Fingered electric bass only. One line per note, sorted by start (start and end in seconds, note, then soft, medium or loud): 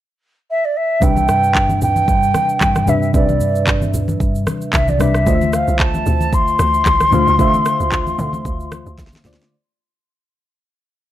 1.02 1.26 C2 medium
1.28 2.04 G2 medium
2.08 2.32 G2 loud
2.61 3.16 G2 medium
3.14 3.38 C2 medium
3.41 4.16 G2 medium
4.20 4.44 G2 loud
4.74 5.23 C2 medium